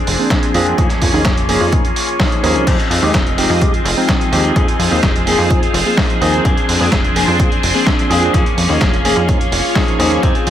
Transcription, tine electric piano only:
0.19 0.52 F3 medium
0.19 0.52 A#3 medium
0.19 0.52 C4 medium
0.19 0.52 D4 medium
0.19 0.52 G#4 medium
0.54 0.75 F3 medium
0.54 0.75 A#3 medium
0.54 0.75 C4 medium
0.54 0.76 D4 medium
0.54 0.76 G#4 loud
0.78 0.87 F3 medium
0.78 0.87 A#3 medium
0.78 0.87 C#4 medium
0.78 0.87 D#4 medium
0.78 0.87 G#4 loud
1.13 1.22 F3 medium
1.13 1.22 A#3 medium
1.13 1.22 C#4 medium
1.13 1.22 D#4 medium
1.13 1.23 G#4 medium
1.48 1.70 F3 medium
1.48 1.70 A#3 medium
1.48 1.70 C#4 medium
1.48 1.70 D#4 medium
1.48 1.70 G#4 medium
1.72 1.81 F3 medium
1.72 1.81 A#3 medium
1.72 1.82 C#4 medium
1.72 1.82 D#4 medium
1.72 1.82 G#4 medium
2.19 2.40 F3 medium
2.19 2.41 A#3 medium
2.19 2.41 C#4 medium
2.19 2.41 D#4 medium
2.19 2.41 G#4 loud
2.43 2.64 F3 medium
2.43 2.64 A#3 medium
2.43 2.64 C#4 medium
2.43 2.64 D#4 medium
2.43 2.64 G#4 loud
2.67 2.76 F3 medium
2.67 2.76 G#3 medium
2.67 2.76 C4 medium
2.67 2.76 D#4 medium
2.67 2.76 G4 loud
3.02 3.11 F3 medium
3.02 3.11 G#3 medium
3.02 3.11 C4 medium
3.02 3.12 D#4 medium
3.02 3.12 G4 loud
3.38 3.59 F3 medium
3.38 3.59 G#3 medium
3.38 3.59 C4 medium
3.38 3.59 D#4 medium
3.38 3.59 G4 medium
3.61 3.70 F3 medium
3.61 3.70 G#3 medium
3.61 3.71 C4 medium
3.61 3.71 D#4 medium
3.61 3.71 G4 loud
3.97 4.29 F3 medium
3.97 4.30 G#3 medium
3.97 4.30 C4 medium
3.97 4.30 D#4 medium
3.97 4.30 G5 medium
4.32 4.53 F3 medium
4.32 4.53 G#3 medium
4.32 4.53 C4 medium
4.32 4.53 D#4 medium
4.32 4.54 G4 loud
4.56 4.65 F3 medium
4.56 4.65 A#3 medium
4.56 4.65 C4 medium
4.56 4.65 D#4 medium
4.56 4.65 G#4 loud
4.91 5.00 F3 medium
4.91 5.00 A#3 medium
4.91 5.00 C4 medium
4.91 5.00 D#4 medium
4.91 5.00 G#4 loud
5.26 5.47 F3 medium
5.26 5.48 A#3 medium
5.26 5.48 C4 medium
5.26 5.48 D#4 medium
5.26 5.48 G#4 medium
5.50 5.59 F3 medium
5.50 5.59 A#3 medium
5.50 5.59 C4 medium
5.50 5.59 D#4 medium
5.50 5.60 G#4 loud
5.85 6.18 F3 medium
5.85 6.18 A#3 medium
5.85 6.19 C4 medium
5.85 6.19 D#4 medium
5.85 6.19 G#4 medium
6.21 6.42 F3 medium
6.21 6.42 A#3 medium
6.21 6.42 C4 medium
6.21 6.42 D#4 medium
6.21 6.43 G#4 loud
6.44 6.54 F3 medium
6.44 6.54 A#3 medium
6.44 6.54 C4 medium
6.44 6.54 D4 medium
6.44 6.54 G#4 loud
6.80 6.89 F3 medium
6.80 6.89 A#3 medium
6.80 6.89 C4 medium
6.80 6.89 D4 medium
6.80 6.89 G#4 medium
7.15 7.37 F3 medium
7.15 7.37 A#3 medium
7.15 7.37 C4 medium
7.15 7.37 D4 medium
7.15 7.37 G#4 medium
7.39 7.48 F3 medium
7.39 7.48 A#3 medium
7.39 7.48 C4 medium
7.39 7.48 D4 medium
7.39 7.49 G#4 loud
7.74 8.07 F3 medium
7.74 8.07 A#3 medium
7.74 8.07 C4 medium
7.74 8.07 D4 medium
7.74 8.08 G#4 medium
8.09 8.31 F3 medium
8.09 8.31 A#3 medium
8.09 8.31 C4 medium
8.09 8.31 D4 medium
8.09 8.31 G#4 loud
8.34 8.43 F3 medium
8.34 8.43 A#3 medium
8.34 8.43 C#4 medium
8.34 8.43 D#4 medium
8.34 8.43 G#4 medium
8.70 8.78 F3 medium
8.70 8.78 A#3 medium
8.70 8.78 C#4 medium
8.70 8.79 D#4 medium
8.70 8.79 G#4 medium
9.05 9.26 F3 medium
9.05 9.26 A#3 medium
9.05 9.26 C#4 medium
9.05 9.26 D#4 medium
9.05 9.26 G#4 medium
9.28 9.37 F3 medium
9.28 9.37 A#3 medium
9.28 9.37 C#4 medium
9.28 9.38 D#4 medium
9.28 9.38 G#4 medium
9.75 9.97 F3 medium
9.75 9.97 A#3 medium
9.75 9.97 C#4 medium
9.75 9.97 D#4 medium
9.75 9.97 G#4 loud
9.99 10.20 F3 medium
9.99 10.20 A#3 medium
9.99 10.20 C#4 medium
9.99 10.20 D#4 medium
9.99 10.21 G#4 loud
10.23 10.32 F3 medium
10.23 10.32 G#3 medium
10.23 10.32 C4 medium
10.23 10.32 D#4 medium
10.23 10.32 G4 loud

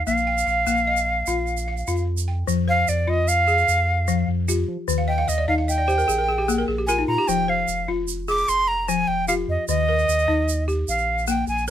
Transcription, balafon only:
0.00 0.27 F5 medium
0.07 0.47 A#3 medium
0.27 0.87 G5 medium
0.47 1.07 F5 medium
0.67 1.07 A#3 medium
0.87 1.47 D#5 medium
1.28 1.68 F4 medium
1.68 2.28 F5 medium
1.88 2.28 F4 medium
2.28 2.68 G5 medium
2.47 2.88 F3 medium
2.68 3.28 C5 medium
3.08 3.48 F4 medium
3.48 3.88 G#4 medium
4.08 4.48 F3 medium
4.48 4.88 F4 medium
4.48 5.08 G4 medium
4.88 5.28 D#3 medium
4.98 5.17 F5 medium
5.08 5.26 D#5 medium
5.18 5.37 F5 medium
5.28 5.46 D#5 medium
5.38 5.57 D5 medium
5.48 5.88 D#4 medium
5.48 5.67 D#5 medium
5.58 5.77 F5 medium
5.68 5.87 D#5 medium
5.78 5.97 D5 medium
5.88 6.08 G4 medium
5.88 6.07 C5 medium
5.98 6.17 A#4 medium
6.08 6.27 G#4 medium
6.18 6.37 A#4 medium
6.29 6.47 G#4 medium
6.38 6.57 G4 medium
6.48 6.88 A#3 medium
6.48 6.67 G#4 medium
6.58 6.77 A#4 medium
6.68 6.87 G#4 medium
6.78 6.97 G4 medium
6.88 7.07 F4 medium
6.88 7.28 A#4 medium
6.98 7.17 D#4 medium
7.08 7.27 F4 medium
7.18 7.37 G4 medium
7.29 7.68 F3 medium
7.48 8.08 C5 medium
7.88 8.28 F4 medium
8.28 8.68 G#4 medium
8.88 9.28 F3 medium
9.28 9.68 F4 medium
9.28 9.88 G4 medium
9.69 10.08 D#3 medium
9.89 10.48 A#4 medium
10.28 10.68 D#4 medium
10.68 10.88 G4 medium
11.28 11.68 A#3 medium

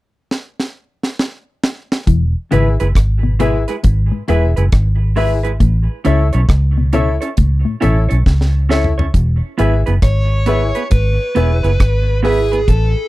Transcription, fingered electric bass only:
2.08 2.33 E1 loud
2.53 2.78 G#1 medium
2.81 2.95 F#1 medium
2.96 3.64 G#1 medium
3.85 4.10 G#1 loud
4.29 4.54 E1 loud
4.58 4.72 F#1 medium
4.73 5.57 G#1 medium
5.61 5.86 A1 loud
6.06 6.31 C#2 medium
6.35 6.48 B1 medium
6.49 7.17 C#2 medium
7.39 7.63 C#2 medium
7.83 8.08 A1 loud
8.12 8.25 B1 medium
8.27 9.11 C#2 medium
9.15 9.40 E1 loud
9.60 9.85 G#1 medium
9.88 10.02 F#1 medium
10.03 10.71 G#1 medium
10.92 11.17 G#1 loud
11.36 11.61 E1 medium
11.64 11.78 F#1 medium
11.80 12.64 G#1 medium
12.69 12.94 A1 medium

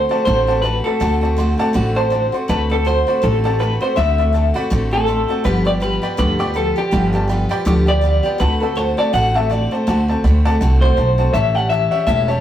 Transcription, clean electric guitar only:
0.00 0.24 C5 loud
0.25 0.62 C5 medium
0.62 0.85 B4 medium
0.84 1.55 A4 medium
1.96 2.31 C5 medium
2.50 2.70 B4 loud
2.72 2.86 A4 medium
2.87 3.25 C5 loud
3.23 3.61 A4 medium
3.60 3.81 B4 medium
3.82 3.96 C5 medium
3.97 4.52 E5 loud
4.93 5.45 A4 loud
5.45 5.66 B4 loud
5.67 5.72 D5 loud
5.82 6.18 B4 loud
6.19 6.53 B4 loud
6.57 6.77 A4 medium
6.78 7.47 G4 medium
7.88 8.40 D5 loud
8.40 8.61 B4 loud
8.61 8.77 A4 medium
8.77 8.98 C5 loud
8.98 9.12 D5 medium
9.14 9.36 F#5 loud
9.36 9.51 E5 loud
9.51 9.72 D5 medium
9.72 10.45 C5 medium
10.81 11.33 C5 loud
11.34 11.55 E5 loud
11.55 11.69 F#5 loud
11.70 12.06 E5 loud
12.07 12.28 E5 loud
12.28 12.40 C#5 loud

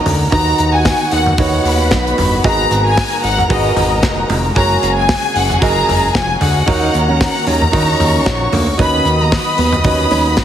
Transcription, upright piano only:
0.00 0.32 D#3 medium
0.00 0.32 D#4 medium
0.00 0.32 F#4 medium
0.00 0.34 A#4 medium
0.00 0.34 C#5 medium
0.32 1.08 D#3 medium
0.32 1.18 D#4 medium
0.32 1.18 F#4 medium
0.32 1.18 B4 medium
0.32 1.18 D#5 medium
1.38 2.24 D#4 medium
1.38 2.24 F#4 medium
1.38 2.24 B4 medium
1.38 2.25 C#5 medium
2.44 3.20 G#2 medium
2.44 3.30 F#4 medium
2.44 3.30 G#4 medium
2.44 3.30 B4 medium
2.44 3.30 D#5 medium
3.49 4.35 F#4 medium
3.49 4.35 G#4 medium
3.49 4.36 B4 medium
3.49 4.36 F#5 medium
4.56 5.41 F#4 medium
4.56 5.41 G#4 medium
4.56 5.41 A#4 medium
4.56 5.42 C#5 medium
5.61 6.47 F#4 medium
5.61 6.47 G#4 medium
5.61 6.48 A#4 medium
5.61 6.48 D#5 medium
6.66 7.43 D#3 medium
6.66 7.52 D#4 medium
6.66 7.52 F#4 medium
6.66 7.53 A#4 medium
6.66 7.53 C#5 medium
7.72 8.58 D#4 medium
7.72 8.58 F#4 medium
7.72 8.59 A#4 medium
7.72 8.59 D#5 medium
8.78 9.54 D#3 medium
8.78 9.64 D#4 medium
8.78 9.64 F#4 medium
8.78 9.65 B4 medium
8.78 9.64 D#5 medium
9.85 10.44 D#4 medium
9.85 10.44 F#4 medium
9.85 10.44 B4 medium
9.85 10.44 D#5 medium

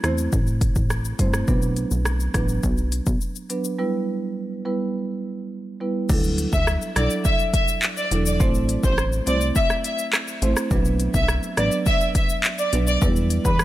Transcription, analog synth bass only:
0.04 0.29 E2 medium
0.33 0.70 A1 loud
0.76 1.14 A1 medium
1.19 1.44 G1 loud
1.48 1.86 B1 loud
1.91 2.29 B1 medium
2.34 2.60 A1 medium
2.63 3.01 B1 loud
3.07 3.19 B1 medium
6.10 6.47 D2 loud
6.53 6.78 D2 loud
6.96 7.09 B1 medium
8.11 8.42 E1 loud
8.40 8.78 A1 loud
8.84 9.21 A1 loud
9.27 9.52 C2 medium
10.42 10.55 A1 loud
10.71 11.09 B1 loud
11.14 11.39 B1 loud
11.58 11.70 A1 loud
12.73 12.98 B1 medium
13.02 13.39 E2 loud
13.45 13.64 E2 loud

